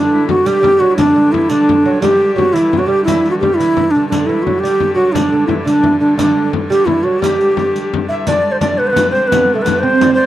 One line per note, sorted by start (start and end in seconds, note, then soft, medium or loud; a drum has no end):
0.00 4.11 G2 medium
0.00 0.47 D3 medium
0.00 4.12 D3 medium
0.00 0.26 D4 medium
0.12 0.31 E4 medium
0.28 0.48 F#4 medium
0.28 0.45 F#4 medium
0.28 frame drum loud
0.46 0.61 G3 medium
0.46 0.93 G4 medium
0.46 0.81 G4 loud
0.46 riq soft
0.46 frame drum soft
0.63 0.81 G3 medium
0.63 frame drum medium
0.80 0.99 F#3 medium
0.80 0.96 F#4 loud
0.91 1.00 E4 medium
0.97 1.15 D3 medium
0.97 1.34 D4 medium
0.97 1.32 D4 medium
0.97 riq medium
0.97 frame drum loud
1.16 1.32 D3 medium
1.32 1.49 E3 medium
1.32 1.51 E4 medium
1.32 1.49 E4 medium
1.32 frame drum medium
1.49 1.86 D3 medium
1.49 2.01 D4 medium
1.49 1.83 D4 medium
1.49 riq medium
1.69 frame drum medium
1.85 2.01 F#3 medium
1.85 1.92 F#4 medium
2.02 2.35 G3 loud
2.02 2.34 G4 loud
2.02 2.57 G4 medium
2.02 riq medium
2.02 frame drum medium
2.35 2.54 F#3 medium
2.35 2.55 F#4 loud
2.35 frame drum medium
2.53 2.81 E3 medium
2.53 2.79 E4 medium
2.53 2.83 E4 medium
2.53 riq medium
2.53 frame drum soft
2.73 frame drum medium
2.78 2.88 F#3 medium
2.78 2.89 F#4 medium
2.78 2.90 F#4 medium
2.87 3.05 G3 medium
2.87 3.04 G4 loud
2.87 3.05 G4 medium
3.04 3.43 E3 medium
3.04 3.30 E4 loud
3.04 3.35 E4 medium
3.04 riq medium
3.04 frame drum medium
3.26 riq soft
3.30 3.35 F#4 medium
3.30 3.41 F#4 medium
3.40 3.60 G3 medium
3.40 3.59 G4 medium
3.40 3.57 G4 medium
3.40 frame drum medium
3.56 3.75 E3 medium
3.56 3.92 E4 loud
3.56 3.94 E4 medium
3.60 riq soft
3.77 3.94 E3 medium
3.77 frame drum medium
3.91 4.08 D4 medium
3.91 4.09 D4 medium
3.91 riq soft
3.91 frame drum soft
3.96 4.10 D3 medium
4.08 8.28 G2 medium
4.08 4.29 D3 medium
4.08 8.27 D3 medium
4.08 4.28 D4 medium
4.08 riq medium
4.08 frame drum medium
4.26 4.45 E3 medium
4.26 4.44 E4 medium
4.26 4.61 E4 medium
4.43 4.63 F#3 medium
4.43 4.61 F#4 medium
4.43 frame drum medium
4.59 4.94 G4 loud
4.59 4.97 G4 medium
4.63 4.95 G3 medium
4.63 riq soft
4.63 frame drum soft
4.80 frame drum medium
4.94 5.15 F#3 medium
4.94 5.14 F#4 loud
4.94 5.14 F#4 medium
5.12 5.31 D3 medium
5.12 5.46 D4 medium
5.12 5.49 D4 medium
5.12 riq medium
5.12 frame drum medium
5.32 5.48 D3 medium
5.47 5.65 E3 medium
5.47 5.53 E4 medium
5.47 5.65 E4 medium
5.47 frame drum medium
5.65 5.83 D3 medium
5.65 5.98 D4 medium
5.65 5.99 D4 medium
5.65 riq medium
5.65 frame drum soft
5.83 6.00 E3 medium
5.83 frame drum medium
6.00 6.16 D3 medium
6.00 6.17 D4 medium
6.18 6.51 D3 medium
6.18 6.51 D4 medium
6.18 riq medium
6.18 frame drum medium
6.53 frame drum medium
6.70 6.88 G3 medium
6.70 6.87 G4 loud
6.70 6.88 G4 medium
6.70 riq medium
6.70 frame drum soft
6.86 7.05 E3 medium
6.86 7.05 E4 medium
6.86 frame drum medium
7.03 7.21 F#3 medium
7.03 7.21 F#4 medium
7.20 8.05 G3 medium
7.20 7.83 G4 medium
7.20 8.06 G4 loud
7.20 riq medium
7.20 frame drum medium
7.40 riq soft
7.40 frame drum soft
7.57 riq soft
7.57 frame drum medium
7.75 riq soft
7.75 frame drum soft
7.94 frame drum medium
8.09 8.28 E4 medium
8.09 8.15 E5 medium
8.09 8.29 E5 medium
8.09 riq soft
8.27 10.26 G2 medium
8.27 10.26 D3 medium
8.27 8.61 D4 medium
8.27 8.53 D5 medium
8.27 8.62 D5 medium
8.27 riq medium
8.27 frame drum medium
8.52 8.60 C5 medium
8.60 8.80 D4 medium
8.60 8.80 D5 medium
8.60 8.82 D5 medium
8.60 riq medium
8.60 frame drum medium
8.78 8.91 B3 medium
8.78 8.88 B4 medium
8.78 8.93 B4 medium
8.87 9.10 B4 medium
8.87 8.92 C5 medium
8.93 9.12 B3 medium
8.93 9.16 B4 medium
8.93 frame drum loud
8.97 riq medium
9.10 9.31 C4 medium
9.10 9.29 C5 loud
9.14 9.34 C5 medium
9.14 riq soft
9.27 9.55 B4 medium
9.32 9.55 B3 medium
9.32 9.60 B4 medium
9.32 riq medium
9.32 frame drum loud
9.50 9.63 A4 medium
9.50 frame drum soft
9.55 9.64 A3 medium
9.55 9.70 A4 medium
9.62 9.83 B3 medium
9.62 9.81 B4 medium
9.62 riq medium
9.67 9.87 B4 medium
9.67 frame drum loud
9.79 10.26 C4 medium
9.79 10.14 C5 loud
9.86 10.05 C5 medium
10.01 10.12 D5 medium
10.01 riq medium
10.01 frame drum medium
10.11 10.18 C5 medium
10.11 10.26 C5 loud
10.17 10.26 D5 loud
10.17 frame drum soft